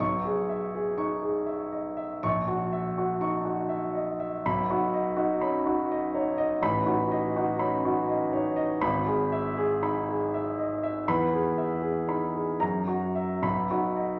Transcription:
0.00 B1 C#6
0.25 G#4
0.49 E5
0.75 G#4
0.98 D#4 C#6
1.23 G#4
1.47 E5
1.72 D#5
1.97 E5
2.23 A#1 C#6
2.48 F#4
2.73 E5
2.98 F#4
3.21 D#4 C#6
3.45 F#4
3.69 E5
3.95 D#5
4.20 E5
4.45 B1 B5
4.70 D#4 F#4
4.93 D#5
5.17 D#4 F#4
5.41 C#4 B5
5.66 D#4 F#4
5.91 D#5
6.14 D#4 C#5
6.38 D#5
6.62 A1 B5
6.86 D#4 F#4
7.11 D#5
7.36 D#4 F#4
7.59 C#4 B5
7.85 D#4 F#4
8.09 D#5
8.33 D#4 C#5
8.56 D#5
8.81 G#1 B5
9.06 G#4
9.32 E5
9.57 G#4
9.83 D#4 B5
10.09 G#4
10.34 E5
10.59 D#5
10.83 E5
11.08 E2 B5
11.33 G#4
11.58 E5
11.82 G#4
12.08 D#4 B5
12.34 G#4
12.60 F#2 A#5
12.87 F#4
13.15 E5
13.42 B1 B5
13.70 D#4 F#4
13.96 D#5

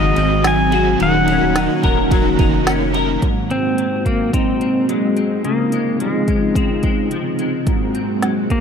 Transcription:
Already playing: F#1 G#2 D#3 F#3 G#3 C4 F#4 G#4 D#5
0.16 G#1 C4, ride
0.44 F#3 G#5, snare, ride, tambourine
0.71 C4 F#4 G#4, ride
0.76 F#3
0.98 D#1 D#3 F#3 A#3 C#4 D#4, ride
1.02 C#4 D#4 A#4 F#5
1.28 C#4, ride
1.42 D#1
1.56 D#4, snare, ride, tambourine
1.83 D#1 A#4, kick, ride
2.10 F#3 C#4 D#4, kick, ride
2.15 A#4
2.39 F1 D#4, kick, ride
2.67 C#4, snare, ride, tambourine
2.93 D#4 A#4, ride
2.98 C#4
3.22 G#2 G#3 A#3 C4 F#4, kick, closed hi-hat
3.50 C4, closed hi-hat
3.78 F#3, closed hi-hat
4.06 A#3 C4, kick, closed hi-hat
4.33 C4 D#4, kick, closed hi-hat
4.61 C4, closed hi-hat
4.89 F#3 G#3, closed hi-hat
5.17 C4, closed hi-hat
5.44 C#3 A#3 D#4 F4, closed hi-hat
5.72 G#3, closed hi-hat
6.00 F3 G#3, closed hi-hat
6.28 G#3, kick, closed hi-hat
6.55 C4, kick, closed hi-hat
6.83 G#3, kick, closed hi-hat
7.11 F3, closed hi-hat
7.39 G#3, closed hi-hat
7.66 G#2 G#3 A#3 F#4, kick, closed hi-hat
7.95 C4, closed hi-hat
8.22 F#3, snare, closed hi-hat
8.50 A#3 C4, kick, closed hi-hat

